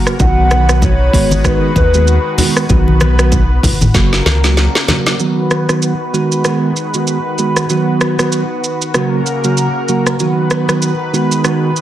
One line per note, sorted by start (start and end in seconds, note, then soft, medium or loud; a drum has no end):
0.00 0.13 C#3 medium
0.00 0.19 C#3 medium
0.00 0.13 F#3 medium
0.00 0.13 A#3 medium
0.00 0.19 A#3 medium
0.00 0.13 F#4 medium
0.00 5.16 F#4 medium
0.00 0.19 A#4 medium
0.07 cross-stick medium
0.07 shaker medium
0.20 1.10 B1 loud
0.20 0.65 D#3 medium
0.20 3.91 D#3 medium
0.20 0.65 F#3 medium
0.20 0.65 B3 medium
0.20 1.13 B3 medium
0.20 0.65 F#4 loud
0.20 2.67 B4 medium
0.20 0.85 F#5 loud
0.20 kick loud
0.20 low conga medium
0.20 shaker medium
0.51 cross-stick loud
0.51 high conga medium
0.51 shaker soft
0.69 0.91 D#3 medium
0.69 0.91 F#3 medium
0.69 0.91 B3 medium
0.69 0.91 F#4 medium
0.69 cross-stick loud
0.69 shaker medium
0.82 1.48 C#5 loud
0.82 kick loud
0.82 low conga medium
0.82 shaker medium
1.13 1.56 G#1 loud
1.13 1.43 D#3 medium
1.13 1.43 G#3 medium
1.13 2.68 G#3 medium
1.13 1.43 B3 medium
1.13 1.43 F#4 loud
1.13 kick loud
1.13 open hi-hat medium
1.13 shaker medium
1.31 high conga medium
1.31 shaker medium
1.44 1.69 D#3 loud
1.44 1.69 G#3 medium
1.44 1.69 B3 medium
1.44 1.70 F#4 loud
1.44 1.77 B4 loud
1.44 kick loud
1.44 cross-stick loud
1.44 shaker medium
1.76 2.18 D#2 medium
1.76 2.35 B4 medium
1.76 kick medium
1.76 high conga medium
1.76 shaker medium
1.94 2.16 D#3 medium
1.94 2.16 G#3 medium
1.94 2.16 B3 medium
1.94 2.17 F#4 medium
1.94 shaker medium
2.07 shaker medium
2.38 2.63 D#3 medium
2.38 2.63 G#3 medium
2.38 2.63 B3 medium
2.38 2.63 F#4 medium
2.38 open hi-hat medium
2.38 high conga medium
2.38 low conga medium
2.38 shaker medium
2.57 cross-stick medium
2.57 shaker medium
2.69 3.59 B1 loud
2.69 3.15 D#3 medium
2.69 3.15 F#3 medium
2.69 3.15 B3 medium
2.69 3.94 B3 medium
2.69 3.15 F#4 loud
2.69 3.94 B4 medium
2.69 kick loud
2.69 low conga medium
2.69 shaker medium
2.88 high conga medium
3.01 cross-stick loud
3.01 high conga medium
3.01 shaker soft
3.19 3.41 D#3 medium
3.19 3.41 F#3 medium
3.19 3.41 B3 medium
3.19 3.42 F#4 medium
3.19 cross-stick loud
3.19 shaker medium
3.32 kick loud
3.32 low conga medium
3.32 shaker medium
3.63 3.90 G#1 loud
3.63 kick loud
3.63 open hi-hat medium
3.63 low conga medium
3.63 shaker medium
3.81 mid tom medium
3.81 high conga medium
3.81 shaker medium
3.94 4.21 F#1 loud
3.94 4.19 C#3 medium
3.94 5.19 C#3 medium
3.94 4.20 F#3 medium
3.94 5.19 A#3 medium
3.94 4.20 A#3 medium
3.94 4.20 F#4 loud
3.94 5.19 A#4 medium
3.94 kick loud
3.94 snare medium
3.94 shaker medium
4.13 snare medium
4.26 4.68 C#2 loud
4.26 snare medium
4.26 high conga medium
4.26 shaker medium
4.44 4.66 C#3 medium
4.44 4.66 F#3 medium
4.44 4.66 A#3 medium
4.44 4.67 F#4 medium
4.44 snare medium
4.44 shaker medium
4.57 snare medium
4.57 shaker medium
4.75 snare medium
4.88 5.13 C#3 medium
4.88 5.13 F#3 medium
4.88 5.13 A#3 medium
4.88 5.13 F#4 medium
4.88 snare loud
4.88 high conga medium
4.88 low conga medium
4.88 shaker medium
5.07 snare medium
5.07 shaker medium
5.19 5.65 D#3 medium
5.19 8.91 D#3 medium
5.19 5.65 F#3 medium
5.19 5.65 B3 medium
5.19 6.13 B3 medium
5.19 11.81 F#4 medium
5.19 5.65 F#4 medium
5.19 8.91 B4 medium
5.19 shaker medium
5.51 cross-stick medium
5.51 shaker soft
5.69 5.91 D#3 medium
5.69 5.91 F#3 medium
5.69 5.91 B3 medium
5.69 5.92 F#4 medium
5.69 cross-stick medium
5.69 shaker medium
5.82 shaker medium
6.13 6.43 D#3 medium
6.13 6.43 G#3 medium
6.13 7.68 G#3 medium
6.13 6.43 B3 medium
6.13 6.43 F#4 loud
6.13 shaker soft
6.32 shaker medium
6.45 6.69 D#3 medium
6.45 6.69 G#3 medium
6.45 6.70 B3 medium
6.45 6.70 F#4 medium
6.45 cross-stick medium
6.45 shaker medium
6.76 shaker soft
6.94 7.16 D#3 medium
6.94 7.16 G#3 medium
6.94 7.16 B3 medium
6.94 7.17 F#4 medium
6.94 shaker medium
7.07 shaker medium
7.38 7.63 D#3 medium
7.38 7.63 G#3 medium
7.38 7.63 B3 medium
7.38 7.64 F#4 medium
7.38 shaker medium
7.57 cross-stick medium
7.57 shaker medium
7.69 8.15 D#3 medium
7.69 8.15 F#3 medium
7.69 8.94 B3 medium
7.69 8.15 B3 medium
7.69 8.15 F#4 medium
7.69 shaker medium
8.01 cross-stick medium
8.01 shaker soft
8.19 8.41 D#3 medium
8.19 8.41 F#3 medium
8.19 8.41 B3 medium
8.19 8.42 F#4 medium
8.19 cross-stick medium
8.19 shaker medium
8.32 shaker medium
8.64 shaker soft
8.82 shaker medium
8.94 9.19 C#3 medium
8.94 10.19 C#3 medium
8.94 9.20 F#3 medium
8.94 10.19 A#3 medium
8.94 9.20 A#3 medium
8.94 9.20 F#4 loud
8.94 10.19 A#4 medium
8.94 cross-stick medium
8.94 shaker medium
9.26 shaker soft
9.44 9.66 C#3 medium
9.44 9.66 F#3 medium
9.44 9.66 A#3 medium
9.44 9.67 F#4 medium
9.44 shaker medium
9.57 shaker medium
9.88 10.13 C#3 medium
9.88 10.13 F#3 medium
9.88 10.13 A#3 medium
9.88 10.14 F#4 medium
9.88 shaker soft
10.07 cross-stick medium
10.07 shaker medium
10.20 10.65 D#3 medium
10.20 11.81 D#3 medium
10.20 10.65 F#3 medium
10.20 11.13 B3 medium
10.20 10.65 B3 medium
10.20 10.65 F#4 medium
10.20 11.81 B4 medium
10.20 shaker medium
10.51 cross-stick medium
10.51 shaker soft
10.69 10.91 D#3 medium
10.69 10.91 F#3 medium
10.69 10.91 B3 medium
10.69 10.92 F#4 medium
10.69 cross-stick medium
10.69 shaker medium
10.82 shaker medium
11.13 11.43 D#3 medium
11.13 11.43 G#3 medium
11.13 11.81 G#3 medium
11.13 11.43 B3 medium
11.13 11.43 F#4 medium
11.13 shaker medium
11.32 shaker medium
11.44 11.69 D#3 medium
11.44 11.70 G#3 medium
11.44 11.70 B3 medium
11.44 11.70 F#4 loud
11.44 cross-stick medium
11.44 shaker medium
11.76 shaker soft